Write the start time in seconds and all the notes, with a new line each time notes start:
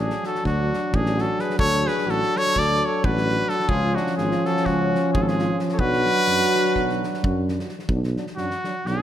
Already playing: A1 F#3 D4
0.00 G#4
0.10 snare
0.24 F#4 A4, snare
0.35 snare
0.44 D2 D4 F#4, kick, snare
0.73 snare
0.92 A1 D4 G#4, kick
1.06 snare
1.18 F#4 A4, snare
1.39 G#4 B4, snare
1.50 snare
1.58 D2 A4 C#5, kick
1.86 G#4 B4, snare
1.98 snare
2.06 A1 F#4, snare
2.10 A4
2.23 snare
2.36 A4 C#5, snare
2.47 snare
2.56 D2 A4 D5, kick, snare
2.85 A4 C#5
3.03 A1 F#4 B4, kick
3.17 snare
3.29 snare
3.49 F#4 A4, snare
3.60 snare
3.69 C#2 F3 C#4 F4 G#4, kick
3.95 D4 F#4, snare
4.07 snare
4.17 G#1 F4 G#4, snare
4.31 snare
4.45 F#4 A4, snare
4.57 snare
4.66 C#2 C#4 F#4, kick, snare
4.95 snare
5.14 G#1 F4 G#4, kick
5.21 F#4 A4
5.28 F4 G#4, snare
5.39 snare
5.59 snare
5.69 snare
5.73 A4 C#5
5.79 B1 F#3 D4 F#4 B4, kick
5.93 snare
6.06 snare
6.16 snare
6.27 F#2, snare
6.41 snare
6.55 snare
6.65 snare
6.75 B1, kick, snare
6.89 snare
7.03 snare
7.14 snare
7.23 F#2, kick
7.48 snare
7.59 snare
7.69 snare
7.79 snare
7.88 B1 F#3 D4, kick
8.04 snare
8.16 F#3 D4, snare
8.27 snare
8.37 F#2 F#3 D4 F#4, snare
8.51 snare
8.64 F#3 D4, snare
8.86 B1 F#3 D4 A4, snare